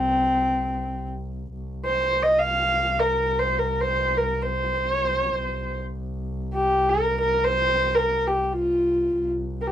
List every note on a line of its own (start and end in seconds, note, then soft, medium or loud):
0.00 1.54 C2 medium
0.00 1.07 C4 medium
1.55 5.37 C2 medium
1.85 2.24 C5 medium
2.22 2.40 D#5 medium
2.39 3.01 F5 medium
3.00 3.40 A#4 medium
3.39 3.60 C5 medium
3.59 3.82 A#4 medium
3.81 4.19 C5 medium
4.17 4.43 A#4 medium
4.42 4.91 C5 medium
4.91 5.05 C#5 medium
5.05 5.19 C5 medium
5.19 5.33 C#5 medium
5.33 5.81 C5 medium
5.37 9.19 C2 medium
6.54 6.91 G4 medium
6.89 7.20 A#4 medium
7.20 7.46 A#4 medium
7.44 7.96 C5 medium
7.94 8.29 A#4 medium
8.27 8.43 G4 medium
8.43 8.55 G4 soft
8.53 9.30 F4 medium
9.19 9.72 C2 medium
9.61 9.68 A#4 medium
9.67 9.72 G4 medium